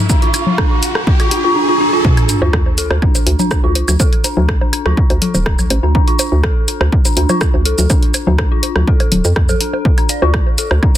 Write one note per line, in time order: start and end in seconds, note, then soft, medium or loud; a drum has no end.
0.00 riser medium
0.09 0.14 D4 loud
0.09 kick loud
0.09 shaker soft
0.22 0.29 F4 loud
0.22 closed hi-hat soft
0.34 closed hi-hat medium
0.34 high woodblock medium
0.34 shaker soft
0.47 high conga medium
0.58 0.63 D4 loud
0.58 kick loud
0.58 cross-stick loud
0.71 0.78 F4 loud
0.83 closed hi-hat loud
0.83 shaker soft
0.95 cross-stick medium
1.07 1.12 D4 loud
1.07 kick loud
1.20 1.26 F4 loud
1.20 closed hi-hat soft
1.20 high woodblock medium
1.31 1.36 D4 loud
1.31 closed hi-hat loud
1.44 1.51 F4 loud
1.56 1.61 D4 loud
1.69 1.75 F4 loud
1.80 1.85 D4 loud
1.93 2.00 F4 loud
2.05 kick loud
2.05 sub drop medium
2.05 high bongo soft
2.17 2.24 D4 medium
2.17 closed hi-hat soft
2.17 high woodblock medium
2.29 2.34 D4 loud
2.29 closed hi-hat medium
2.29 shaker soft
2.42 2.59 D2 loud
2.42 2.48 F4 loud
2.42 high bongo medium
2.53 kick loud
2.53 cross-stick medium
2.66 high bongo soft
2.78 2.81 A4 medium
2.78 closed hi-hat loud
2.78 shaker soft
2.90 2.99 D2 medium
2.90 cross-stick medium
2.90 high bongo medium
3.02 3.05 D4 medium
3.02 kick loud
3.02 high woodblock medium
3.15 closed hi-hat soft
3.15 high bongo soft
3.15 shaker medium
3.27 3.36 D2 loud
3.27 closed hi-hat medium
3.39 3.46 D4 medium
3.39 high conga medium
3.39 shaker soft
3.51 3.56 D4 loud
3.51 kick loud
3.51 cross-stick loud
3.51 high bongo medium
3.51 shaker soft
3.64 3.77 D2 loud
3.64 3.70 F4 loud
3.75 3.84 C2 loud
3.75 closed hi-hat medium
3.75 high bongo soft
3.88 3.96 D2 medium
3.88 high conga medium
3.88 high woodblock medium
3.88 shaker medium
4.00 4.03 A4 medium
4.00 kick loud
4.00 high bongo medium
4.00 shaker soft
4.13 closed hi-hat soft
4.24 4.27 D4 medium
4.24 closed hi-hat loud
4.24 high bongo soft
4.24 shaker soft
4.37 4.54 D2 loud
4.37 high conga medium
4.49 kick loud
4.49 cross-stick loud
4.61 4.68 D4 medium
4.61 high bongo medium
4.73 4.78 D4 loud
4.73 closed hi-hat loud
4.73 high woodblock medium
4.86 4.94 D2 medium
4.86 4.92 F4 loud
4.86 cross-stick medium
4.86 high bongo soft
4.86 high conga medium
4.97 kick loud
5.10 5.18 D2 loud
5.10 closed hi-hat soft
5.10 high bongo medium
5.22 5.25 A4 medium
5.22 closed hi-hat loud
5.22 high conga medium
5.34 5.60 D1 medium
5.34 high bongo soft
5.34 shaker soft
5.46 5.49 D4 medium
5.46 kick loud
5.46 cross-stick loud
5.59 5.67 D2 medium
5.59 high conga medium
5.59 high woodblock medium
5.59 shaker soft
5.70 5.80 A1 loud
5.70 closed hi-hat loud
5.70 high bongo medium
5.83 6.00 D2 medium
5.83 5.90 D4 medium
5.95 6.00 D4 loud
5.95 kick loud
5.95 high bongo soft
6.08 6.14 F4 loud
6.08 closed hi-hat soft
6.19 closed hi-hat loud
6.19 high bongo medium
6.19 shaker soft
6.32 6.49 D2 loud
6.44 6.46 A4 medium
6.44 kick loud
6.44 cross-stick loud
6.44 high bongo soft
6.44 high woodblock medium
6.68 6.71 D4 medium
6.68 closed hi-hat loud
6.68 shaker soft
6.81 6.89 D2 medium
6.81 cross-stick medium
6.81 high bongo medium
6.92 kick loud
7.05 7.12 D4 medium
7.05 closed hi-hat soft
7.05 high bongo soft
7.05 shaker soft
7.17 7.26 D2 loud
7.17 7.22 D4 loud
7.17 closed hi-hat loud
7.29 7.36 F4 loud
7.29 high bongo medium
7.29 high conga medium
7.29 high woodblock medium
7.29 shaker soft
7.41 kick loud
7.41 cross-stick loud
7.41 shaker soft
7.54 7.67 D2 loud
7.54 high bongo soft
7.65 7.75 C2 loud
7.65 7.68 A4 medium
7.65 closed hi-hat loud
7.78 7.87 D2 medium
7.78 high conga medium
7.78 shaker soft
7.90 7.93 D4 medium
7.90 kick loud
7.90 high bongo medium
7.90 shaker soft
8.03 closed hi-hat soft
8.14 closed hi-hat loud
8.14 high bongo soft
8.14 high woodblock medium
8.14 shaker soft
8.27 8.44 D2 loud
8.27 8.34 D4 medium
8.27 high conga medium
8.39 8.44 D4 loud
8.39 kick loud
8.39 cross-stick loud
8.39 high bongo medium
8.52 8.58 F4 loud
8.63 closed hi-hat loud
8.63 high bongo soft
8.76 8.84 D2 medium
8.76 cross-stick medium
8.76 high conga medium
8.88 8.90 A4 medium
8.88 kick loud
9.00 closed hi-hat soft
9.00 high bongo medium
9.00 high woodblock medium
9.12 9.21 D1 medium
9.12 closed hi-hat medium
9.12 high conga medium
9.25 9.33 F2 medium
9.25 high bongo soft
9.25 shaker soft
9.36 9.54 F2 medium
9.36 kick loud
9.36 cross-stick medium
9.49 9.56 A4 loud
9.49 high bongo medium
9.49 high conga medium
9.49 shaker soft
9.61 9.68 D4 medium
9.61 closed hi-hat medium
9.73 9.80 A4 medium
9.73 high bongo soft
9.85 kick loud
9.85 high bongo soft
9.98 10.04 D4 medium
9.98 closed hi-hat soft
9.98 high woodblock medium
10.09 10.14 D5 medium
10.09 closed hi-hat medium
10.09 shaker soft
10.22 10.39 D2 loud
10.22 10.29 F4 loud
10.22 high bongo medium
10.34 kick loud
10.34 cross-stick medium
10.47 high bongo soft
10.58 10.61 A4 medium
10.58 closed hi-hat medium
10.58 shaker soft
10.71 10.79 D2 medium
10.71 cross-stick medium
10.71 high bongo medium
10.83 10.86 D4 medium
10.83 kick loud
10.83 high woodblock medium